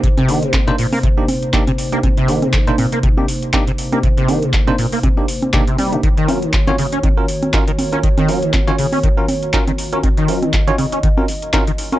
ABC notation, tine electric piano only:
X:1
M:4/4
L:1/16
Q:"Swing 16ths" 1/4=120
K:Cm
V:1 name="Tine electric piano"
z2 [B,DEG] z2 [B,DEc] z3 [B,DEG] z2 [B,DEG] z2 [B,DEG] | z2 [B,DEG] z2 [B,DEc] z3 [B,DEG] z2 [B,DEG] z2 [B,DEG] | z2 [B,DEG] z2 [B,DEc] z3 [B,DEG] z2 [B,DEG] z2 [B,DEG] | z2 [_DF_GB] z2 [DFG_d] z3 [DFGB] z2 [DFGB] z2 [DFGB] |
z2 [_DF_GB] z2 [DFG_d] z3 [DFGB] z2 [DFGB] z2 [DFGB] | z2 [_DF_GB] z2 [DFG_d] z3 [DFGB] z2 [DFGB] z2 [DFGB] |]